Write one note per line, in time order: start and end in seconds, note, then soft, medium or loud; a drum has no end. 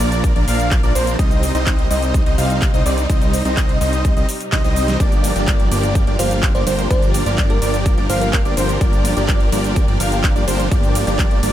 0.00 0.33 A#1 loud
0.00 0.33 F3 medium
0.00 1.15 A#3 medium
0.00 0.33 A#3 medium
0.00 0.33 D4 medium
0.00 1.15 F4 medium
0.00 0.33 A#4 medium
0.00 1.15 D5 medium
0.00 0.33 D5 medium
0.00 open hi-hat medium
0.00 shaker medium
0.12 closed hi-hat medium
0.12 shaker soft
0.24 kick loud
0.24 closed hi-hat medium
0.24 shaker soft
0.36 0.45 A#1 loud
0.36 0.45 F3 medium
0.36 0.45 A#3 medium
0.36 0.45 D4 medium
0.36 0.45 A#4 medium
0.36 0.45 D5 medium
0.36 closed hi-hat soft
0.48 0.81 A#1 medium
0.48 0.81 F3 medium
0.48 0.81 A#3 medium
0.48 0.81 D4 medium
0.48 0.81 A#4 medium
0.48 0.81 F5 loud
0.48 open hi-hat loud
0.48 shaker medium
0.60 closed hi-hat medium
0.60 shaker soft
0.71 kick loud
0.71 clap loud
0.71 closed hi-hat medium
0.71 shaker soft
0.83 0.93 A#1 loud
0.83 0.92 F3 medium
0.83 0.92 A#3 medium
0.83 0.92 D4 medium
0.83 0.92 A#4 medium
0.83 0.92 D5 loud
0.83 closed hi-hat soft
0.83 shaker soft
0.95 1.17 A#1 loud
0.95 1.16 F3 medium
0.95 1.16 A#3 medium
0.95 1.16 D4 medium
0.95 1.16 A#4 medium
0.95 1.16 C5 medium
0.95 open hi-hat medium
0.95 shaker medium
1.07 closed hi-hat medium
1.07 shaker soft
1.19 1.52 C2 loud
1.19 4.96 C3 medium
1.19 1.52 G3 medium
1.19 11.53 G3 medium
1.19 1.52 C4 medium
1.19 1.52 D#4 medium
1.19 4.96 D#4 medium
1.19 1.52 C5 medium
1.19 1.52 D#5 medium
1.19 kick loud
1.19 closed hi-hat medium
1.19 shaker soft
1.31 closed hi-hat soft
1.31 shaker soft
1.43 open hi-hat loud
1.43 shaker medium
1.55 1.88 C2 loud
1.55 1.88 G3 medium
1.55 1.88 C4 medium
1.55 1.88 D#4 medium
1.55 1.88 C5 medium
1.55 1.88 D#5 loud
1.55 1.88 D#5 medium
1.55 closed hi-hat medium
1.55 shaker soft
1.67 kick loud
1.67 clap loud
1.67 closed hi-hat medium
1.67 shaker soft
1.79 closed hi-hat soft
1.90 2.24 C2 loud
1.90 2.23 G3 medium
1.90 2.23 C4 medium
1.90 2.23 D#4 medium
1.90 2.23 C5 medium
1.90 2.23 D#5 medium
1.90 open hi-hat medium
1.90 shaker medium
2.02 closed hi-hat medium
2.02 shaker soft
2.14 kick loud
2.14 closed hi-hat medium
2.14 shaker soft
2.26 2.36 C2 loud
2.26 2.36 G3 medium
2.26 2.36 C4 medium
2.26 2.36 D#4 medium
2.26 2.36 C5 medium
2.26 2.36 D#5 medium
2.26 closed hi-hat soft
2.38 2.71 C2 loud
2.38 2.71 G3 medium
2.38 2.71 C4 medium
2.38 2.71 D#4 medium
2.38 2.71 C5 medium
2.38 2.71 F5 medium
2.38 2.71 F5 loud
2.38 open hi-hat loud
2.38 shaker medium
2.50 closed hi-hat medium
2.50 shaker soft
2.62 kick loud
2.62 clap loud
2.62 closed hi-hat medium
2.62 shaker soft
2.74 2.83 C2 loud
2.74 2.83 G3 medium
2.74 2.83 C4 medium
2.74 2.83 D#4 medium
2.74 2.83 C5 medium
2.74 2.83 D#5 loud
2.74 closed hi-hat soft
2.74 shaker soft
2.86 3.07 C2 loud
2.86 3.07 G3 medium
2.86 3.07 C4 medium
2.86 3.07 D#4 medium
2.86 3.07 C5 medium
2.86 3.07 D5 medium
2.86 open hi-hat medium
2.86 shaker medium
2.98 closed hi-hat medium
2.98 shaker soft
3.10 3.43 C2 loud
3.10 3.42 G3 medium
3.10 3.42 C4 medium
3.10 3.42 D#4 medium
3.10 3.42 C5 medium
3.10 3.42 D#5 medium
3.10 kick loud
3.10 closed hi-hat medium
3.10 shaker soft
3.22 closed hi-hat soft
3.22 shaker soft
3.33 open hi-hat loud
3.33 shaker medium
3.45 3.79 C2 loud
3.45 3.78 G3 medium
3.45 3.78 C4 medium
3.45 3.78 D#4 medium
3.45 3.78 C5 medium
3.45 3.78 D#5 medium
3.45 3.78 D#5 loud
3.45 closed hi-hat medium
3.45 shaker soft
3.57 kick loud
3.57 clap loud
3.57 closed hi-hat medium
3.57 shaker soft
3.69 closed hi-hat soft
3.81 4.14 C2 loud
3.81 4.14 G3 medium
3.81 4.14 C4 medium
3.81 4.14 D#4 medium
3.81 4.14 C5 medium
3.81 4.14 D#5 medium
3.81 open hi-hat medium
3.81 shaker medium
3.93 closed hi-hat medium
3.93 shaker soft
4.05 kick loud
4.05 closed hi-hat medium
4.05 shaker soft
4.17 4.24 C2 loud
4.17 4.26 G3 medium
4.17 4.26 C4 medium
4.17 4.26 D#4 medium
4.17 4.26 C5 medium
4.17 4.26 D#5 medium
4.17 closed hi-hat soft
4.17 shaker soft
4.29 open hi-hat loud
4.29 shaker medium
4.41 closed hi-hat medium
4.41 shaker soft
4.52 4.62 C2 loud
4.52 4.62 G3 loud
4.52 4.62 C4 medium
4.52 4.62 D#4 medium
4.52 4.62 C5 medium
4.52 4.61 D#5 loud
4.52 4.62 D#5 loud
4.52 kick loud
4.52 snare medium
4.52 clap loud
4.52 closed hi-hat medium
4.52 shaker soft
4.64 4.98 C2 medium
4.64 4.97 G3 loud
4.64 4.97 C4 medium
4.64 4.97 D#4 medium
4.64 4.97 C5 medium
4.64 4.97 D#5 loud
4.64 snare medium
4.64 closed hi-hat soft
4.64 shaker soft
4.76 open hi-hat medium
4.76 shaker medium
4.88 snare medium
4.88 closed hi-hat medium
4.88 shaker soft
5.00 5.33 G1 loud
5.00 5.33 F3 medium
5.00 5.33 A#3 medium
5.00 5.33 D4 medium
5.00 11.53 F4 medium
5.00 5.33 G4 medium
5.00 11.53 A#4 medium
5.00 5.33 D5 medium
5.00 kick loud
5.00 closed hi-hat medium
5.00 ride medium
5.00 shaker soft
5.12 closed hi-hat soft
5.12 shaker soft
5.24 open hi-hat loud
5.24 ride medium
5.24 shaker medium
5.36 5.69 G1 loud
5.36 5.69 F3 medium
5.36 5.69 A#3 medium
5.36 5.69 D4 medium
5.36 5.69 G4 medium
5.36 5.69 D5 loud
5.36 5.69 D5 medium
5.36 closed hi-hat medium
5.36 shaker soft
5.48 kick loud
5.48 clap loud
5.48 closed hi-hat medium
5.48 ride medium
5.48 shaker soft
5.60 closed hi-hat soft
5.71 6.05 G1 loud
5.71 6.04 F3 medium
5.71 6.04 A#3 medium
5.71 6.04 D4 medium
5.71 6.04 G4 medium
5.71 6.04 D5 medium
5.71 open hi-hat medium
5.71 ride medium
5.71 shaker medium
5.83 closed hi-hat medium
5.83 shaker soft
5.95 kick loud
5.95 closed hi-hat medium
5.95 ride medium
5.95 shaker soft
6.07 6.17 G1 loud
6.07 6.17 F3 medium
6.07 6.17 A#3 medium
6.07 6.17 D4 medium
6.07 6.17 G4 medium
6.07 6.17 D5 medium
6.07 closed hi-hat soft
6.19 6.52 G1 loud
6.19 6.52 F3 medium
6.19 6.52 A#3 medium
6.19 6.52 D4 medium
6.19 6.52 G4 medium
6.19 6.52 C5 medium
6.19 6.52 F5 loud
6.19 open hi-hat loud
6.19 ride medium
6.19 shaker medium
6.31 closed hi-hat medium
6.31 shaker soft
6.43 kick loud
6.43 clap loud
6.43 closed hi-hat medium
6.43 ride medium
6.43 shaker soft
6.55 6.64 G1 loud
6.55 6.64 F3 medium
6.55 6.64 A#3 medium
6.55 6.64 D4 medium
6.55 6.64 G4 medium
6.55 6.62 C5 medium
6.55 6.64 D5 medium
6.55 6.64 D5 loud
6.55 closed hi-hat soft
6.55 shaker soft
6.67 6.88 G1 loud
6.67 6.88 F3 medium
6.67 6.88 A#3 medium
6.67 6.88 D4 medium
6.67 6.88 G4 medium
6.67 6.88 C5 medium
6.67 6.74 C5 medium
6.67 open hi-hat medium
6.67 ride medium
6.67 shaker medium
6.79 closed hi-hat medium
6.79 shaker soft
6.90 7.24 G1 loud
6.90 7.23 F3 medium
6.90 7.23 A#3 medium
6.90 7.23 D4 medium
6.90 7.23 G4 medium
6.90 7.12 C5 medium
6.90 7.23 D5 medium
6.90 kick loud
6.90 closed hi-hat medium
6.90 ride medium
6.90 shaker soft
7.02 closed hi-hat soft
7.02 shaker soft
7.14 open hi-hat loud
7.14 ride medium
7.14 shaker medium
7.26 7.60 G1 loud
7.26 7.59 F3 medium
7.26 7.59 A#3 medium
7.26 7.59 D4 medium
7.26 7.59 G4 medium
7.26 7.59 D5 loud
7.26 closed hi-hat medium
7.26 shaker soft
7.38 kick loud
7.38 clap loud
7.38 closed hi-hat medium
7.38 ride medium
7.38 shaker soft
7.50 7.71 A#4 medium
7.50 closed hi-hat soft
7.62 7.95 G1 loud
7.62 7.95 F3 medium
7.62 7.95 A#3 medium
7.62 7.95 D4 medium
7.62 7.95 G4 medium
7.62 7.95 D5 medium
7.62 open hi-hat loud
7.62 ride medium
7.62 shaker medium
7.74 closed hi-hat medium
7.74 shaker soft
7.86 kick loud
7.86 closed hi-hat medium
7.86 ride medium
7.86 shaker soft
7.98 8.07 G1 loud
7.98 8.07 F3 medium
7.98 8.07 A#3 medium
7.98 8.07 D4 medium
7.98 8.07 G4 medium
7.98 8.07 D5 medium
7.98 closed hi-hat soft
8.10 8.43 G1 loud
8.10 8.42 F3 medium
8.10 8.42 A#3 medium
8.10 8.42 D4 medium
8.10 8.42 G4 medium
8.10 8.19 C5 medium
8.10 8.42 F5 loud
8.10 open hi-hat loud
8.10 ride medium
8.10 shaker medium
8.21 8.29 A#4 medium
8.21 closed hi-hat medium
8.21 shaker soft
8.33 8.41 A#4 medium
8.33 kick loud
8.33 clap loud
8.33 closed hi-hat medium
8.33 ride medium
8.33 shaker soft
8.45 8.55 G1 loud
8.45 8.54 F3 medium
8.45 8.54 A#3 medium
8.45 8.54 D4 medium
8.45 8.54 G4 medium
8.45 8.54 D5 loud
8.45 closed hi-hat soft
8.45 shaker soft
8.57 8.79 G1 loud
8.57 8.78 F3 medium
8.57 8.78 A#3 medium
8.57 8.78 D4 medium
8.57 8.78 G4 medium
8.57 8.78 C5 medium
8.57 open hi-hat loud
8.57 ride medium
8.57 shaker medium
8.69 closed hi-hat medium
8.69 shaker soft
8.81 9.14 F3 medium
8.81 9.14 A#3 medium
8.81 9.14 D4 medium
8.81 9.14 G4 medium
8.81 9.14 D5 medium
8.81 kick loud
8.81 closed hi-hat medium
8.81 ride medium
8.81 shaker soft
8.93 closed hi-hat soft
8.93 shaker soft
9.05 open hi-hat loud
9.05 ride medium
9.05 shaker medium
9.17 9.50 G1 loud
9.17 9.50 F3 medium
9.17 9.50 A#3 medium
9.17 9.50 D4 medium
9.17 9.50 G4 medium
9.17 9.50 D5 loud
9.17 9.50 D5 medium
9.17 closed hi-hat medium
9.17 shaker soft
9.28 kick loud
9.28 clap loud
9.28 closed hi-hat medium
9.28 ride medium
9.28 shaker soft
9.40 closed hi-hat soft
9.52 9.86 G1 loud
9.52 9.85 F3 medium
9.52 9.85 A#3 medium
9.52 9.85 D4 medium
9.52 9.85 G4 medium
9.52 9.85 D5 medium
9.52 open hi-hat loud
9.52 ride medium
9.52 shaker medium
9.64 closed hi-hat medium
9.64 shaker soft
9.76 kick loud
9.76 closed hi-hat medium
9.76 ride medium
9.76 shaker soft
9.88 9.98 G1 loud
9.88 9.98 F3 medium
9.88 9.98 A#3 medium
9.88 9.98 D4 medium
9.88 9.98 G4 medium
9.88 9.98 D5 medium
9.88 closed hi-hat soft
10.00 10.33 G1 loud
10.00 10.33 F3 medium
10.00 10.33 A#3 medium
10.00 10.33 D4 medium
10.00 10.33 G4 medium
10.00 10.33 F5 medium
10.00 10.33 F5 loud
10.00 open hi-hat loud
10.00 ride medium
10.00 shaker medium
10.12 closed hi-hat medium
10.12 shaker soft
10.24 kick loud
10.24 clap loud
10.24 closed hi-hat medium
10.24 ride medium
10.24 shaker soft
10.36 10.45 G1 loud
10.36 10.45 F3 medium
10.36 10.45 A#3 medium
10.36 10.45 D4 medium
10.36 10.45 G4 medium
10.36 10.45 D5 loud
10.36 closed hi-hat soft
10.36 shaker soft
10.48 10.69 G1 loud
10.48 10.69 F3 medium
10.48 10.69 A#3 medium
10.48 10.69 D4 medium
10.48 10.69 G4 medium
10.48 10.69 C5 medium
10.48 open hi-hat loud
10.48 ride medium
10.48 shaker medium
10.60 closed hi-hat medium
10.60 shaker soft
10.71 11.05 G1 loud
10.71 11.04 F3 medium
10.71 11.04 A#3 medium
10.71 11.04 D4 medium
10.71 11.04 G4 medium
10.71 11.04 D5 medium
10.71 kick loud
10.71 closed hi-hat medium
10.71 ride medium
10.71 shaker soft
10.83 closed hi-hat soft
10.83 shaker soft
10.95 open hi-hat loud
10.95 ride medium
10.95 shaker medium
11.07 11.41 G1 loud
11.07 11.40 F3 medium
11.07 11.40 A#3 medium
11.07 11.40 D4 medium
11.07 11.40 G4 medium
11.07 11.40 D5 loud
11.07 11.40 D5 medium
11.07 closed hi-hat medium
11.07 shaker soft
11.19 kick loud
11.19 clap loud
11.19 closed hi-hat medium
11.19 ride medium
11.19 shaker soft
11.31 closed hi-hat soft
11.43 11.53 G1 loud
11.43 11.53 F3 medium
11.43 11.53 A#3 medium
11.43 11.53 D4 medium
11.43 11.53 G4 medium
11.43 11.53 D5 medium
11.43 open hi-hat medium
11.43 ride medium
11.43 shaker medium